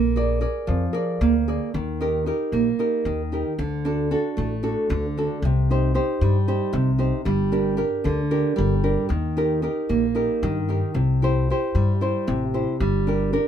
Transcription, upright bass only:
Already playing: A#1
0.68 F2
1.21 D2
1.74 D#2
2.52 A#1
3.05 D#2
3.59 D2
4.38 A1
4.90 D2
5.42 C2
6.21 G2
6.73 C2
7.26 G1
8.05 D2
8.58 G1
9.10 D#2
9.90 A#1
10.43 G2
10.95 C2
11.75 G2
12.28 A1
12.80 G1

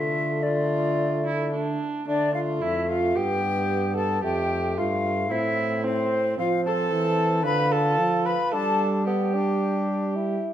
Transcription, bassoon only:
Already playing: A3
0.42 A3
2.07 A3
3.16 B3
4.24 A3
4.77 A3
5.31 C4
5.84 C4
6.37 C4
7.45 F4
8.53 D4
9.07 B3
9.34 D4
10.15 E4

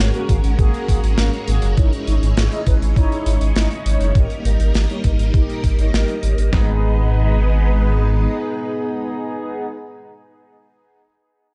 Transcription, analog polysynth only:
0.14 A#3 F#4 A#4
0.29 A#3 F#4 G#4
0.59 A#3 F#4 G#4
0.89 A#3 F#4 G#4
1.18 A#3 F#4 A#4
1.48 A#3 F#4 G#4
1.78 D#4 E4 C#5
2.07 D#4 E4 C#5
2.52 D#4 E4 D#5
2.67 D#4 E4 B4
2.97 D#4 E4 C#5
3.26 D#4 E4 C#5
3.56 D#4 E4 D#5
3.86 D#4 E4 C#5
4.15 D#4 G4 A#4
4.45 D#4 G4 A#4
4.90 D#4 G4 C#5
5.04 D#4 G4 A#4
5.34 D#4 G4 A#4
5.79 D#4 G4 C#5
5.94 D#4 G4 A#4
6.23 D#4 G4 C#5
6.38 D#4 G4 A#4
6.53 B3 D#4 G#4

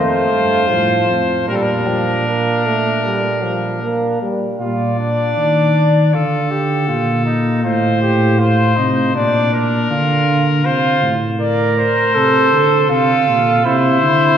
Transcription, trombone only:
Already playing: A3
0.70 F3
1.48 G3
1.87 F3
2.26 A#3
2.65 A3
3.05 G3
3.43 F3
3.83 A#3
4.22 G3

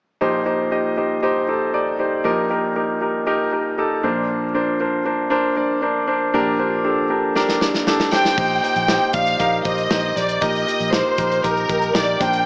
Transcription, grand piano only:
0.21 A#1 A#2 D#4 G4 C5
0.46 D#4 G4 C5
0.71 D#4 G4 D#5
0.97 D#4 G4 C5
1.23 D#4 G4 C5
1.48 D#4 G4 A4
1.74 D#4 G4 D5
1.99 D#4 G4 C5
2.24 A#1 A#2 D#4 G4 A#4
2.50 D#4 G4 A#4
2.76 D#4 G4 A#4
3.01 D#4 G4 A#4
3.27 D#4 G4 A#4
3.52 D#4 G4 A#4
3.78 D#4 G4 A4
4.03 A#1 A#2 D4 A#4 C5
4.54 D4 A#4 C5
4.80 D4 A#4 C5
5.05 D4 A#4 C5
5.30 D4 A#4 C5
5.56 D4 A#4 D5
5.82 D4 A#4 C5
6.08 D4 A#4 C5
6.34 A#1 A#2 D4 G4 A#4
6.59 D4 G4 C5
6.84 D4 G4 A4
7.10 D4 G4 A#4
7.36 D4 G4 A#4
7.61 D4 G4 A#4
7.87 D4 G4 A4
8.13 D4 G4 C5
8.38 A#2 D#4 G4 C5
8.63 D#4 G4 C5
8.89 D#4 G4 C5
9.14 D#4 G4 D5
9.39 D#4 G4 A#4
9.65 D#4 G4 C5
9.90 D#4 G4 C5
10.16 D#4 G4 D#5
10.41 A#2 D#4 G4 A#4
10.67 D#4 G4 A#4
10.93 D#4 G4 A#4
11.18 D#4 G4 A#4
11.44 D#4 G4 A#4
11.69 D#4 G4 A#4
11.94 D#4 G4 A#4
12.20 A#2 D4 A#4 C5

